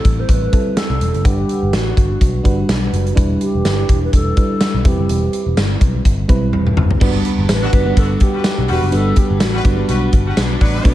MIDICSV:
0, 0, Header, 1, 7, 480
1, 0, Start_track
1, 0, Key_signature, 1, "major"
1, 0, Tempo, 480000
1, 1251, Time_signature, 4, 2, 24, 8
1, 10942, End_track
2, 0, Start_track
2, 0, Title_t, "Alto flute"
2, 0, Program_c, 0, 73
2, 0, Note_on_c, 0, 69, 104
2, 194, Note_on_c, 0, 72, 96
2, 209, Note_off_c, 0, 69, 0
2, 299, Note_on_c, 0, 71, 100
2, 314, Note_off_c, 0, 72, 0
2, 769, Note_on_c, 0, 69, 96
2, 784, Note_off_c, 0, 71, 0
2, 1259, Note_on_c, 0, 67, 91
2, 1274, Note_off_c, 0, 69, 0
2, 1741, Note_on_c, 0, 66, 88
2, 1756, Note_off_c, 0, 67, 0
2, 2696, Note_off_c, 0, 66, 0
2, 3417, Note_on_c, 0, 67, 99
2, 3986, Note_off_c, 0, 67, 0
2, 4037, Note_on_c, 0, 71, 103
2, 4131, Note_off_c, 0, 71, 0
2, 4138, Note_on_c, 0, 69, 100
2, 4872, Note_on_c, 0, 67, 84
2, 4886, Note_off_c, 0, 69, 0
2, 5581, Note_off_c, 0, 67, 0
2, 7508, Note_on_c, 0, 71, 116
2, 7981, Note_on_c, 0, 69, 98
2, 7996, Note_off_c, 0, 71, 0
2, 8218, Note_on_c, 0, 67, 102
2, 8233, Note_off_c, 0, 69, 0
2, 8701, Note_on_c, 0, 66, 88
2, 8716, Note_off_c, 0, 67, 0
2, 8939, Note_on_c, 0, 69, 105
2, 8954, Note_off_c, 0, 66, 0
2, 9175, Note_on_c, 0, 67, 93
2, 9190, Note_off_c, 0, 69, 0
2, 9408, Note_on_c, 0, 66, 91
2, 9423, Note_off_c, 0, 67, 0
2, 10610, Note_off_c, 0, 66, 0
2, 10942, End_track
3, 0, Start_track
3, 0, Title_t, "Horn section"
3, 0, Program_c, 1, 61
3, 7626, Note_on_c, 1, 50, 95
3, 7626, Note_on_c, 1, 59, 94
3, 7626, Note_on_c, 1, 66, 104
3, 7694, Note_off_c, 1, 50, 0
3, 7694, Note_off_c, 1, 59, 0
3, 7694, Note_off_c, 1, 66, 0
3, 7971, Note_on_c, 1, 66, 97
3, 7972, Note_on_c, 1, 50, 83
3, 7973, Note_on_c, 1, 59, 91
3, 8083, Note_off_c, 1, 66, 0
3, 8084, Note_off_c, 1, 50, 0
3, 8085, Note_off_c, 1, 59, 0
3, 8343, Note_on_c, 1, 55, 78
3, 8343, Note_on_c, 1, 66, 77
3, 8343, Note_on_c, 1, 71, 82
3, 8435, Note_off_c, 1, 55, 0
3, 8435, Note_off_c, 1, 66, 0
3, 8435, Note_off_c, 1, 71, 0
3, 8689, Note_on_c, 1, 71, 105
3, 8690, Note_on_c, 1, 55, 100
3, 8690, Note_on_c, 1, 66, 91
3, 8843, Note_off_c, 1, 55, 0
3, 8843, Note_off_c, 1, 66, 0
3, 8843, Note_off_c, 1, 71, 0
3, 9538, Note_on_c, 1, 55, 89
3, 9539, Note_on_c, 1, 66, 95
3, 9540, Note_on_c, 1, 71, 106
3, 9609, Note_off_c, 1, 55, 0
3, 9609, Note_off_c, 1, 66, 0
3, 9610, Note_off_c, 1, 71, 0
3, 9885, Note_on_c, 1, 71, 98
3, 9887, Note_on_c, 1, 55, 87
3, 9887, Note_on_c, 1, 66, 90
3, 10000, Note_off_c, 1, 71, 0
3, 10001, Note_off_c, 1, 55, 0
3, 10001, Note_off_c, 1, 66, 0
3, 10264, Note_on_c, 1, 66, 81
3, 10264, Note_on_c, 1, 71, 90
3, 10265, Note_on_c, 1, 55, 76
3, 10355, Note_off_c, 1, 66, 0
3, 10356, Note_off_c, 1, 55, 0
3, 10356, Note_off_c, 1, 71, 0
3, 10609, Note_on_c, 1, 54, 96
3, 10609, Note_on_c, 1, 62, 100
3, 10609, Note_on_c, 1, 71, 111
3, 10926, Note_off_c, 1, 54, 0
3, 10926, Note_off_c, 1, 62, 0
3, 10926, Note_off_c, 1, 71, 0
3, 10942, End_track
4, 0, Start_track
4, 0, Title_t, "FM electric piano"
4, 0, Program_c, 2, 5
4, 0, Control_c, 2, 64, 127
4, 0, Note_on_c, 2, 55, 84
4, 0, Note_on_c, 2, 60, 74
4, 0, Note_on_c, 2, 64, 77
4, 0, Note_on_c, 2, 69, 89
4, 525, Note_off_c, 2, 55, 0
4, 525, Note_off_c, 2, 60, 0
4, 525, Note_on_c, 2, 55, 69
4, 525, Note_on_c, 2, 60, 66
4, 532, Note_off_c, 2, 64, 0
4, 532, Note_on_c, 2, 64, 68
4, 534, Note_off_c, 2, 69, 0
4, 534, Note_on_c, 2, 69, 80
4, 1053, Note_off_c, 2, 55, 0
4, 1053, Note_off_c, 2, 60, 0
4, 1056, Note_off_c, 2, 64, 0
4, 1057, Note_off_c, 2, 69, 0
4, 1239, Note_on_c, 2, 55, 72
4, 1246, Note_on_c, 2, 62, 67
4, 1247, Note_on_c, 2, 78, 64
4, 1252, Note_on_c, 2, 71, 77
4, 1265, Control_c, 2, 64, 0
4, 1461, Control_c, 2, 64, 127
4, 1942, Note_off_c, 2, 55, 0
4, 1945, Note_off_c, 2, 62, 0
4, 1946, Note_off_c, 2, 78, 0
4, 1948, Note_off_c, 2, 71, 0
4, 2435, Note_on_c, 2, 55, 89
4, 2440, Note_on_c, 2, 62, 82
4, 2442, Note_on_c, 2, 66, 85
4, 2450, Note_on_c, 2, 71, 96
4, 2968, Note_off_c, 2, 55, 0
4, 2970, Note_off_c, 2, 62, 0
4, 2971, Note_off_c, 2, 66, 0
4, 2975, Note_off_c, 2, 71, 0
4, 3152, Note_on_c, 2, 55, 86
4, 3155, Note_on_c, 2, 62, 80
4, 3156, Note_on_c, 2, 64, 79
4, 3164, Note_on_c, 2, 71, 97
4, 3184, Control_c, 2, 64, 0
4, 3347, Control_c, 2, 64, 127
4, 3858, Note_off_c, 2, 55, 0
4, 3860, Note_off_c, 2, 62, 0
4, 3860, Note_off_c, 2, 64, 0
4, 3864, Note_off_c, 2, 71, 0
4, 4364, Note_on_c, 2, 55, 80
4, 4368, Note_on_c, 2, 62, 69
4, 4371, Note_on_c, 2, 64, 69
4, 4377, Note_on_c, 2, 71, 79
4, 4833, Note_off_c, 2, 55, 0
4, 4840, Note_off_c, 2, 64, 0
4, 4843, Note_off_c, 2, 71, 0
4, 4845, Note_on_c, 2, 55, 70
4, 4850, Note_off_c, 2, 62, 0
4, 4850, Note_on_c, 2, 60, 67
4, 4852, Note_on_c, 2, 64, 70
4, 4855, Note_on_c, 2, 71, 82
4, 4865, Control_c, 2, 64, 0
4, 5027, Control_c, 2, 64, 127
4, 5621, Note_off_c, 2, 55, 0
4, 5624, Note_off_c, 2, 60, 0
4, 5625, Note_off_c, 2, 64, 0
4, 5626, Note_off_c, 2, 71, 0
4, 6282, Note_on_c, 2, 55, 85
4, 6284, Note_on_c, 2, 60, 79
4, 6288, Note_on_c, 2, 64, 87
4, 6293, Note_on_c, 2, 71, 101
4, 6812, Note_off_c, 2, 55, 0
4, 6812, Note_off_c, 2, 60, 0
4, 6814, Note_off_c, 2, 64, 0
4, 6817, Note_off_c, 2, 71, 0
4, 7003, Note_on_c, 2, 55, 86
4, 7006, Note_on_c, 2, 59, 83
4, 7010, Note_on_c, 2, 66, 80
4, 7011, Note_on_c, 2, 62, 83
4, 7016, Note_on_c, 2, 71, 96
4, 7025, Control_c, 2, 64, 0
4, 7199, Control_c, 2, 64, 127
4, 7532, Note_off_c, 2, 55, 0
4, 7533, Note_off_c, 2, 59, 0
4, 7536, Note_off_c, 2, 62, 0
4, 7536, Note_off_c, 2, 66, 0
4, 7538, Note_off_c, 2, 71, 0
4, 7719, Note_on_c, 2, 55, 69
4, 7723, Note_on_c, 2, 59, 66
4, 7725, Note_on_c, 2, 62, 67
4, 7727, Note_on_c, 2, 66, 69
4, 7733, Note_on_c, 2, 71, 82
4, 7821, Note_off_c, 2, 55, 0
4, 7822, Note_off_c, 2, 59, 0
4, 7824, Note_off_c, 2, 62, 0
4, 7824, Note_off_c, 2, 66, 0
4, 7828, Note_off_c, 2, 71, 0
4, 7848, Note_on_c, 2, 55, 75
4, 7851, Note_on_c, 2, 59, 70
4, 7854, Note_on_c, 2, 62, 70
4, 7858, Note_on_c, 2, 78, 69
4, 7863, Note_on_c, 2, 71, 85
4, 8548, Note_off_c, 2, 55, 0
4, 8549, Note_off_c, 2, 59, 0
4, 8550, Note_off_c, 2, 62, 0
4, 8552, Note_off_c, 2, 78, 0
4, 8554, Note_off_c, 2, 71, 0
4, 8912, Note_on_c, 2, 55, 71
4, 8916, Note_on_c, 2, 59, 66
4, 8916, Note_on_c, 2, 62, 67
4, 8920, Note_on_c, 2, 66, 65
4, 8924, Note_on_c, 2, 71, 82
4, 9446, Note_off_c, 2, 55, 0
4, 9448, Note_off_c, 2, 59, 0
4, 9448, Note_off_c, 2, 62, 0
4, 9451, Note_off_c, 2, 66, 0
4, 9452, Note_off_c, 2, 71, 0
4, 9636, Note_on_c, 2, 55, 77
4, 9638, Note_on_c, 2, 59, 70
4, 9642, Note_on_c, 2, 62, 66
4, 9644, Note_on_c, 2, 66, 65
4, 9649, Note_on_c, 2, 71, 80
4, 9739, Note_off_c, 2, 55, 0
4, 9740, Note_off_c, 2, 59, 0
4, 9742, Note_off_c, 2, 62, 0
4, 9743, Note_off_c, 2, 66, 0
4, 9746, Note_off_c, 2, 71, 0
4, 9765, Note_on_c, 2, 55, 77
4, 9770, Note_on_c, 2, 59, 71
4, 9771, Note_on_c, 2, 62, 72
4, 9777, Note_on_c, 2, 66, 71
4, 9779, Note_on_c, 2, 71, 85
4, 10466, Note_off_c, 2, 55, 0
4, 10468, Note_off_c, 2, 59, 0
4, 10469, Note_off_c, 2, 62, 0
4, 10472, Note_off_c, 2, 66, 0
4, 10472, Note_off_c, 2, 71, 0
4, 10838, Note_on_c, 2, 57, 86
4, 10840, Note_on_c, 2, 59, 82
4, 10844, Note_on_c, 2, 62, 83
4, 10846, Note_on_c, 2, 66, 84
4, 10850, Note_on_c, 2, 71, 97
4, 10864, Control_c, 2, 64, 0
4, 10942, Note_off_c, 2, 57, 0
4, 10942, Note_off_c, 2, 59, 0
4, 10942, Note_off_c, 2, 62, 0
4, 10942, Note_off_c, 2, 66, 0
4, 10942, Note_off_c, 2, 71, 0
4, 10942, End_track
5, 0, Start_track
5, 0, Title_t, "Overdriven electric guitar"
5, 0, Program_c, 3, 29
5, 7005, Note_on_c, 3, 55, 84
5, 7019, Note_on_c, 3, 62, 82
5, 7028, Note_on_c, 3, 67, 97
5, 7713, Note_off_c, 3, 67, 0
5, 7725, Note_on_c, 3, 67, 56
5, 7728, Note_off_c, 3, 55, 0
5, 7757, Note_off_c, 3, 62, 0
5, 7761, Note_on_c, 3, 62, 43
5, 7958, Note_on_c, 3, 55, 66
5, 7963, Note_off_c, 3, 62, 0
5, 7968, Note_off_c, 3, 67, 0
5, 7975, Note_on_c, 3, 62, 64
5, 7990, Note_on_c, 3, 67, 72
5, 8427, Note_off_c, 3, 55, 0
5, 8439, Note_on_c, 3, 55, 61
5, 8459, Note_off_c, 3, 62, 0
5, 8461, Note_off_c, 3, 67, 0
5, 8463, Note_on_c, 3, 62, 67
5, 8476, Note_on_c, 3, 67, 73
5, 8912, Note_off_c, 3, 55, 0
5, 8924, Note_on_c, 3, 55, 80
5, 8935, Note_off_c, 3, 62, 0
5, 8936, Note_off_c, 3, 67, 0
5, 8939, Note_on_c, 3, 62, 80
5, 8948, Note_on_c, 3, 67, 81
5, 9627, Note_off_c, 3, 67, 0
5, 9639, Note_on_c, 3, 67, 54
5, 9648, Note_off_c, 3, 55, 0
5, 9674, Note_off_c, 3, 62, 0
5, 9678, Note_on_c, 3, 62, 45
5, 9883, Note_on_c, 3, 55, 66
5, 9885, Note_off_c, 3, 67, 0
5, 9888, Note_off_c, 3, 62, 0
5, 9900, Note_on_c, 3, 62, 64
5, 10349, Note_off_c, 3, 55, 0
5, 10361, Note_on_c, 3, 55, 65
5, 10377, Note_off_c, 3, 62, 0
5, 10381, Note_on_c, 3, 62, 71
5, 10397, Note_on_c, 3, 67, 76
5, 10835, Note_on_c, 3, 47, 90
5, 10846, Note_off_c, 3, 55, 0
5, 10863, Note_on_c, 3, 54, 100
5, 10864, Note_off_c, 3, 67, 0
5, 10885, Note_off_c, 3, 62, 0
5, 10889, Note_on_c, 3, 59, 102
5, 10942, Note_off_c, 3, 47, 0
5, 10942, Note_off_c, 3, 54, 0
5, 10942, Note_off_c, 3, 59, 0
5, 10942, End_track
6, 0, Start_track
6, 0, Title_t, "Picked electric bass"
6, 0, Program_c, 4, 34
6, 51, Note_on_c, 4, 33, 83
6, 231, Note_off_c, 4, 33, 0
6, 288, Note_on_c, 4, 33, 92
6, 469, Note_off_c, 4, 33, 0
6, 897, Note_on_c, 4, 36, 82
6, 981, Note_off_c, 4, 36, 0
6, 1005, Note_on_c, 4, 28, 79
6, 1106, Note_off_c, 4, 28, 0
6, 1141, Note_on_c, 4, 30, 85
6, 1223, Note_off_c, 4, 30, 0
6, 1249, Note_on_c, 4, 31, 100
6, 1430, Note_off_c, 4, 31, 0
6, 1625, Note_on_c, 4, 31, 90
6, 1706, Note_off_c, 4, 31, 0
6, 1732, Note_on_c, 4, 33, 86
6, 1912, Note_off_c, 4, 33, 0
6, 1974, Note_on_c, 4, 31, 87
6, 2153, Note_off_c, 4, 31, 0
6, 2212, Note_on_c, 4, 35, 86
6, 2392, Note_off_c, 4, 35, 0
6, 2452, Note_on_c, 4, 31, 83
6, 2632, Note_off_c, 4, 31, 0
6, 2691, Note_on_c, 4, 35, 92
6, 2871, Note_off_c, 4, 35, 0
6, 2929, Note_on_c, 4, 30, 89
6, 3110, Note_off_c, 4, 30, 0
6, 3173, Note_on_c, 4, 28, 102
6, 3352, Note_off_c, 4, 28, 0
6, 3546, Note_on_c, 4, 28, 93
6, 3626, Note_off_c, 4, 28, 0
6, 3651, Note_on_c, 4, 31, 93
6, 3831, Note_off_c, 4, 31, 0
6, 3890, Note_on_c, 4, 28, 88
6, 4070, Note_off_c, 4, 28, 0
6, 4132, Note_on_c, 4, 28, 100
6, 4312, Note_off_c, 4, 28, 0
6, 4742, Note_on_c, 4, 35, 103
6, 4824, Note_off_c, 4, 35, 0
6, 4852, Note_on_c, 4, 28, 94
6, 4951, Note_off_c, 4, 28, 0
6, 4984, Note_on_c, 4, 30, 89
6, 5065, Note_off_c, 4, 30, 0
6, 5094, Note_on_c, 4, 28, 98
6, 5273, Note_off_c, 4, 28, 0
6, 5462, Note_on_c, 4, 28, 88
6, 5543, Note_off_c, 4, 28, 0
6, 5568, Note_on_c, 4, 31, 98
6, 5749, Note_off_c, 4, 31, 0
6, 5813, Note_on_c, 4, 35, 91
6, 5992, Note_off_c, 4, 35, 0
6, 6051, Note_on_c, 4, 31, 102
6, 6231, Note_off_c, 4, 31, 0
6, 6292, Note_on_c, 4, 35, 92
6, 6529, Note_on_c, 4, 28, 95
6, 6544, Note_off_c, 4, 35, 0
6, 6710, Note_off_c, 4, 28, 0
6, 6769, Note_on_c, 4, 30, 90
6, 6950, Note_off_c, 4, 30, 0
6, 7014, Note_on_c, 4, 31, 96
6, 7193, Note_off_c, 4, 31, 0
6, 7382, Note_on_c, 4, 31, 90
6, 7464, Note_off_c, 4, 31, 0
6, 7490, Note_on_c, 4, 33, 94
6, 7670, Note_off_c, 4, 33, 0
6, 7730, Note_on_c, 4, 31, 87
6, 7911, Note_off_c, 4, 31, 0
6, 7970, Note_on_c, 4, 31, 96
6, 8150, Note_off_c, 4, 31, 0
6, 8584, Note_on_c, 4, 35, 101
6, 8665, Note_off_c, 4, 35, 0
6, 8689, Note_on_c, 4, 28, 89
6, 8789, Note_off_c, 4, 28, 0
6, 8821, Note_on_c, 4, 30, 82
6, 8903, Note_off_c, 4, 30, 0
6, 8932, Note_on_c, 4, 31, 109
6, 9112, Note_off_c, 4, 31, 0
6, 9302, Note_on_c, 4, 31, 100
6, 9384, Note_off_c, 4, 31, 0
6, 9411, Note_on_c, 4, 33, 87
6, 9591, Note_off_c, 4, 33, 0
6, 9649, Note_on_c, 4, 31, 86
6, 9830, Note_off_c, 4, 31, 0
6, 9892, Note_on_c, 4, 35, 92
6, 10072, Note_off_c, 4, 35, 0
6, 10129, Note_on_c, 4, 31, 93
6, 10310, Note_off_c, 4, 31, 0
6, 10373, Note_on_c, 4, 35, 98
6, 10552, Note_off_c, 4, 35, 0
6, 10612, Note_on_c, 4, 33, 85
6, 10792, Note_off_c, 4, 33, 0
6, 10851, Note_on_c, 4, 35, 107
6, 10942, Note_off_c, 4, 35, 0
6, 10942, End_track
7, 0, Start_track
7, 0, Title_t, "Drums"
7, 49, Note_on_c, 9, 36, 98
7, 50, Note_on_c, 9, 42, 69
7, 149, Note_off_c, 9, 36, 0
7, 151, Note_off_c, 9, 42, 0
7, 288, Note_on_c, 9, 36, 94
7, 288, Note_on_c, 9, 42, 84
7, 387, Note_off_c, 9, 42, 0
7, 388, Note_off_c, 9, 36, 0
7, 528, Note_on_c, 9, 42, 66
7, 529, Note_on_c, 9, 36, 96
7, 628, Note_off_c, 9, 42, 0
7, 629, Note_off_c, 9, 36, 0
7, 769, Note_on_c, 9, 38, 113
7, 769, Note_on_c, 9, 42, 84
7, 869, Note_off_c, 9, 38, 0
7, 869, Note_off_c, 9, 42, 0
7, 1012, Note_on_c, 9, 42, 72
7, 1112, Note_off_c, 9, 42, 0
7, 1144, Note_on_c, 9, 42, 51
7, 1244, Note_off_c, 9, 42, 0
7, 1250, Note_on_c, 9, 36, 117
7, 1253, Note_on_c, 9, 42, 93
7, 1350, Note_off_c, 9, 36, 0
7, 1353, Note_off_c, 9, 42, 0
7, 1492, Note_on_c, 9, 42, 70
7, 1592, Note_off_c, 9, 42, 0
7, 1731, Note_on_c, 9, 42, 77
7, 1733, Note_on_c, 9, 38, 98
7, 1831, Note_off_c, 9, 42, 0
7, 1833, Note_off_c, 9, 38, 0
7, 1972, Note_on_c, 9, 36, 96
7, 1978, Note_on_c, 9, 42, 73
7, 2072, Note_off_c, 9, 36, 0
7, 2078, Note_off_c, 9, 42, 0
7, 2210, Note_on_c, 9, 36, 96
7, 2212, Note_on_c, 9, 42, 84
7, 2310, Note_off_c, 9, 36, 0
7, 2312, Note_off_c, 9, 42, 0
7, 2451, Note_on_c, 9, 36, 97
7, 2451, Note_on_c, 9, 42, 64
7, 2551, Note_off_c, 9, 36, 0
7, 2551, Note_off_c, 9, 42, 0
7, 2691, Note_on_c, 9, 38, 112
7, 2691, Note_on_c, 9, 42, 87
7, 2791, Note_off_c, 9, 38, 0
7, 2791, Note_off_c, 9, 42, 0
7, 2936, Note_on_c, 9, 42, 69
7, 3036, Note_off_c, 9, 42, 0
7, 3066, Note_on_c, 9, 42, 49
7, 3166, Note_off_c, 9, 42, 0
7, 3172, Note_on_c, 9, 36, 117
7, 3174, Note_on_c, 9, 42, 92
7, 3272, Note_off_c, 9, 36, 0
7, 3274, Note_off_c, 9, 42, 0
7, 3409, Note_on_c, 9, 42, 72
7, 3509, Note_off_c, 9, 42, 0
7, 3650, Note_on_c, 9, 42, 83
7, 3652, Note_on_c, 9, 38, 101
7, 3653, Note_on_c, 9, 54, 59
7, 3750, Note_off_c, 9, 42, 0
7, 3752, Note_off_c, 9, 38, 0
7, 3753, Note_off_c, 9, 54, 0
7, 3891, Note_on_c, 9, 36, 99
7, 3894, Note_on_c, 9, 42, 72
7, 3991, Note_off_c, 9, 36, 0
7, 3994, Note_off_c, 9, 42, 0
7, 4131, Note_on_c, 9, 36, 91
7, 4132, Note_on_c, 9, 42, 81
7, 4231, Note_off_c, 9, 36, 0
7, 4232, Note_off_c, 9, 42, 0
7, 4368, Note_on_c, 9, 42, 71
7, 4371, Note_on_c, 9, 36, 95
7, 4468, Note_off_c, 9, 42, 0
7, 4471, Note_off_c, 9, 36, 0
7, 4606, Note_on_c, 9, 38, 120
7, 4606, Note_on_c, 9, 42, 86
7, 4607, Note_on_c, 9, 54, 67
7, 4706, Note_off_c, 9, 38, 0
7, 4706, Note_off_c, 9, 42, 0
7, 4707, Note_off_c, 9, 54, 0
7, 4850, Note_on_c, 9, 36, 111
7, 4852, Note_on_c, 9, 42, 76
7, 4950, Note_off_c, 9, 36, 0
7, 4952, Note_off_c, 9, 42, 0
7, 5093, Note_on_c, 9, 42, 90
7, 5193, Note_off_c, 9, 42, 0
7, 5331, Note_on_c, 9, 42, 80
7, 5431, Note_off_c, 9, 42, 0
7, 5572, Note_on_c, 9, 42, 86
7, 5573, Note_on_c, 9, 38, 104
7, 5575, Note_on_c, 9, 54, 62
7, 5672, Note_off_c, 9, 42, 0
7, 5673, Note_off_c, 9, 38, 0
7, 5675, Note_off_c, 9, 54, 0
7, 5811, Note_on_c, 9, 36, 95
7, 5815, Note_on_c, 9, 42, 76
7, 5911, Note_off_c, 9, 36, 0
7, 5915, Note_off_c, 9, 42, 0
7, 6052, Note_on_c, 9, 36, 93
7, 6056, Note_on_c, 9, 42, 92
7, 6152, Note_off_c, 9, 36, 0
7, 6156, Note_off_c, 9, 42, 0
7, 6291, Note_on_c, 9, 42, 69
7, 6292, Note_on_c, 9, 36, 99
7, 6391, Note_off_c, 9, 42, 0
7, 6392, Note_off_c, 9, 36, 0
7, 6531, Note_on_c, 9, 48, 61
7, 6631, Note_off_c, 9, 48, 0
7, 6665, Note_on_c, 9, 47, 60
7, 6765, Note_off_c, 9, 47, 0
7, 6770, Note_on_c, 9, 45, 97
7, 6870, Note_off_c, 9, 45, 0
7, 6906, Note_on_c, 9, 43, 95
7, 7006, Note_off_c, 9, 43, 0
7, 7012, Note_on_c, 9, 36, 118
7, 7013, Note_on_c, 9, 49, 99
7, 7112, Note_off_c, 9, 36, 0
7, 7113, Note_off_c, 9, 49, 0
7, 7250, Note_on_c, 9, 42, 75
7, 7350, Note_off_c, 9, 42, 0
7, 7489, Note_on_c, 9, 42, 84
7, 7490, Note_on_c, 9, 38, 105
7, 7492, Note_on_c, 9, 54, 66
7, 7589, Note_off_c, 9, 42, 0
7, 7590, Note_off_c, 9, 38, 0
7, 7592, Note_off_c, 9, 54, 0
7, 7730, Note_on_c, 9, 36, 99
7, 7730, Note_on_c, 9, 42, 75
7, 7830, Note_off_c, 9, 36, 0
7, 7830, Note_off_c, 9, 42, 0
7, 7968, Note_on_c, 9, 42, 92
7, 7969, Note_on_c, 9, 36, 100
7, 8068, Note_off_c, 9, 42, 0
7, 8069, Note_off_c, 9, 36, 0
7, 8202, Note_on_c, 9, 42, 66
7, 8208, Note_on_c, 9, 36, 93
7, 8302, Note_off_c, 9, 42, 0
7, 8308, Note_off_c, 9, 36, 0
7, 8441, Note_on_c, 9, 42, 89
7, 8442, Note_on_c, 9, 38, 121
7, 8442, Note_on_c, 9, 54, 71
7, 8541, Note_off_c, 9, 42, 0
7, 8542, Note_off_c, 9, 38, 0
7, 8542, Note_off_c, 9, 54, 0
7, 8682, Note_on_c, 9, 46, 70
7, 8782, Note_off_c, 9, 46, 0
7, 8922, Note_on_c, 9, 42, 98
7, 9022, Note_off_c, 9, 42, 0
7, 9161, Note_on_c, 9, 42, 79
7, 9167, Note_on_c, 9, 36, 88
7, 9261, Note_off_c, 9, 42, 0
7, 9267, Note_off_c, 9, 36, 0
7, 9402, Note_on_c, 9, 42, 87
7, 9404, Note_on_c, 9, 38, 106
7, 9406, Note_on_c, 9, 54, 63
7, 9502, Note_off_c, 9, 42, 0
7, 9504, Note_off_c, 9, 38, 0
7, 9506, Note_off_c, 9, 54, 0
7, 9648, Note_on_c, 9, 36, 103
7, 9649, Note_on_c, 9, 42, 77
7, 9748, Note_off_c, 9, 36, 0
7, 9749, Note_off_c, 9, 42, 0
7, 9887, Note_on_c, 9, 42, 94
7, 9987, Note_off_c, 9, 42, 0
7, 10127, Note_on_c, 9, 42, 68
7, 10129, Note_on_c, 9, 36, 92
7, 10227, Note_off_c, 9, 42, 0
7, 10229, Note_off_c, 9, 36, 0
7, 10370, Note_on_c, 9, 38, 121
7, 10370, Note_on_c, 9, 42, 90
7, 10371, Note_on_c, 9, 54, 65
7, 10470, Note_off_c, 9, 38, 0
7, 10470, Note_off_c, 9, 42, 0
7, 10471, Note_off_c, 9, 54, 0
7, 10609, Note_on_c, 9, 46, 73
7, 10611, Note_on_c, 9, 36, 95
7, 10709, Note_off_c, 9, 46, 0
7, 10711, Note_off_c, 9, 36, 0
7, 10850, Note_on_c, 9, 36, 114
7, 10850, Note_on_c, 9, 42, 97
7, 10942, Note_off_c, 9, 36, 0
7, 10942, Note_off_c, 9, 42, 0
7, 10942, End_track
0, 0, End_of_file